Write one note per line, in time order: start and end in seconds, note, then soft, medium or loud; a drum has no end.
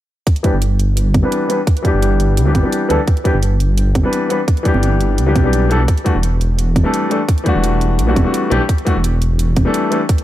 0.27 kick loud
0.27 closed hi-hat medium
0.36 closed hi-hat soft
0.43 0.52 E3 medium
0.43 0.53 G3 medium
0.43 0.53 B3 medium
0.43 0.53 D4 medium
0.43 0.53 G4 medium
0.43 kick medium
0.43 closed hi-hat medium
0.54 1.13 G1 loud
0.62 closed hi-hat medium
0.79 closed hi-hat medium
0.97 closed hi-hat medium
1.14 1.23 G1 medium
1.14 kick loud
1.14 closed hi-hat medium
1.14 high conga medium
1.23 1.47 E3 medium
1.23 1.47 G3 medium
1.23 1.48 B3 medium
1.23 1.48 D4 medium
1.23 1.48 B4 medium
1.32 closed hi-hat medium
1.48 1.58 E3 medium
1.48 1.58 G3 medium
1.48 1.58 B3 medium
1.48 1.59 D4 medium
1.48 1.59 B4 medium
1.48 closed hi-hat medium
1.67 kick loud
1.67 closed hi-hat medium
1.77 closed hi-hat soft
1.82 2.43 E3 medium
1.82 2.44 G3 medium
1.82 2.44 B3 medium
1.82 2.45 D4 medium
1.82 kick medium
1.82 closed hi-hat medium
1.87 2.46 G4 medium
1.94 2.39 G1 loud
2.02 closed hi-hat medium
2.20 closed hi-hat medium
2.37 2.53 D2 medium
2.37 closed hi-hat medium
2.45 2.61 E3 medium
2.45 2.62 G3 medium
2.45 2.62 B3 medium
2.45 2.62 D4 medium
2.45 2.63 G4 medium
2.55 2.63 G1 medium
2.55 kick loud
2.55 closed hi-hat medium
2.55 high conga medium
2.63 2.87 E3 medium
2.63 2.88 G3 medium
2.63 2.88 B3 medium
2.63 2.88 D4 medium
2.63 2.89 G4 medium
2.72 closed hi-hat medium
2.89 2.98 D2 medium
2.89 2.98 E3 medium
2.89 2.98 G3 medium
2.89 2.99 B3 medium
2.89 2.99 D4 medium
2.89 2.99 A4 loud
2.89 closed hi-hat medium
3.08 kick loud
3.08 closed hi-hat medium
3.17 closed hi-hat soft
3.24 3.33 E3 medium
3.24 3.33 G3 medium
3.24 3.34 B3 medium
3.24 3.34 D4 medium
3.24 3.34 G4 medium
3.24 kick medium
3.24 closed hi-hat medium
3.34 3.94 G1 medium
3.43 closed hi-hat medium
3.60 closed hi-hat medium
3.78 closed hi-hat medium
3.95 4.04 G1 medium
3.95 kick loud
3.95 closed hi-hat medium
3.95 high conga medium
4.03 4.28 E3 medium
4.03 4.28 G3 medium
4.03 4.28 B3 medium
4.03 4.29 D4 medium
4.03 4.29 B4 medium
4.13 closed hi-hat medium
4.29 4.38 E3 medium
4.29 4.38 G3 medium
4.29 4.39 B3 medium
4.29 4.39 D4 medium
4.29 4.39 B4 medium
4.29 closed hi-hat medium
4.48 kick loud
4.48 closed hi-hat medium
4.57 closed hi-hat soft
4.63 5.24 E3 medium
4.63 5.24 G3 medium
4.63 5.25 B3 medium
4.63 5.26 D4 medium
4.63 kick medium
4.63 closed hi-hat medium
4.68 5.26 G4 medium
4.74 5.20 G1 medium
4.74 high conga medium
4.83 closed hi-hat medium
5.01 closed hi-hat medium
5.18 5.37 D2 loud
5.18 closed hi-hat medium
5.26 5.42 E3 medium
5.26 5.42 G3 medium
5.26 5.43 B3 medium
5.26 5.43 D4 medium
5.26 5.43 G4 medium
5.36 5.87 B1 medium
5.36 kick loud
5.36 closed hi-hat medium
5.36 high conga medium
5.43 5.68 E3 medium
5.43 5.68 G3 medium
5.43 5.69 B3 medium
5.43 5.69 D4 medium
5.43 5.69 G4 medium
5.53 closed hi-hat medium
5.69 5.79 E3 medium
5.69 5.79 G3 medium
5.69 5.79 B3 medium
5.69 5.79 D4 medium
5.69 5.80 A4 loud
5.69 closed hi-hat medium
5.88 kick loud
5.88 closed hi-hat medium
5.97 closed hi-hat soft
6.04 6.14 E3 medium
6.04 6.14 G3 medium
6.04 6.14 A3 medium
6.04 6.15 D4 medium
6.04 6.15 F#4 medium
6.04 kick medium
6.04 closed hi-hat medium
6.15 6.75 E1 loud
6.23 closed hi-hat medium
6.41 closed hi-hat medium
6.59 closed hi-hat medium
6.76 6.84 E1 medium
6.76 kick loud
6.76 closed hi-hat medium
6.76 high conga medium
6.84 7.08 E3 medium
6.84 7.09 G3 medium
6.84 7.09 A3 medium
6.84 7.09 D4 medium
6.84 7.10 A4 medium
6.94 closed hi-hat medium
7.10 7.19 E3 medium
7.10 7.19 G3 medium
7.10 7.20 A3 medium
7.10 7.20 D4 medium
7.10 7.20 A4 medium
7.10 closed hi-hat medium
7.29 kick loud
7.29 closed hi-hat medium
7.38 closed hi-hat soft
7.44 8.05 E3 medium
7.44 8.05 G3 medium
7.44 8.06 A3 medium
7.44 8.06 D4 medium
7.44 kick medium
7.44 closed hi-hat medium
7.48 8.07 F#4 medium
7.56 8.00 E1 loud
7.64 closed hi-hat medium
7.81 closed hi-hat medium
7.99 8.15 B1 loud
7.99 closed hi-hat medium
8.07 8.23 E3 medium
8.07 8.23 G3 medium
8.07 8.23 A3 medium
8.07 8.24 D4 medium
8.07 8.24 F#4 medium
8.16 8.25 E1 medium
8.16 kick loud
8.16 closed hi-hat medium
8.16 high conga medium
8.24 8.49 E3 medium
8.24 8.49 G3 medium
8.24 8.49 A3 medium
8.24 8.50 D4 medium
8.24 8.50 F#4 medium
8.34 closed hi-hat medium
8.50 8.60 B1 medium
8.50 8.59 E3 medium
8.50 8.60 G3 medium
8.50 8.60 A3 medium
8.50 8.60 D4 medium
8.50 8.60 G4 loud
8.50 closed hi-hat medium
8.69 kick loud
8.69 closed hi-hat medium
8.78 closed hi-hat soft
8.85 8.94 E3 medium
8.85 8.95 G3 medium
8.85 8.95 A3 medium
8.85 8.95 D4 medium
8.85 8.95 F#4 medium
8.85 kick medium
8.85 closed hi-hat medium
8.96 9.56 E1 medium
9.04 closed hi-hat medium
9.22 closed hi-hat medium
9.39 closed hi-hat medium
9.56 9.65 E1 medium
9.56 kick medium
9.56 closed hi-hat medium
9.56 high conga medium
9.65 9.89 E3 medium
9.65 9.90 G3 medium
9.65 9.90 A3 medium
9.65 9.90 D4 medium
9.65 9.90 A4 medium
9.74 closed hi-hat medium
9.90 10.00 E3 medium
9.90 10.00 G3 medium
9.90 10.00 A3 medium
9.90 10.01 D4 medium
9.90 10.01 A4 medium
9.90 closed hi-hat medium
10.09 kick loud
10.09 closed hi-hat medium
10.18 closed hi-hat soft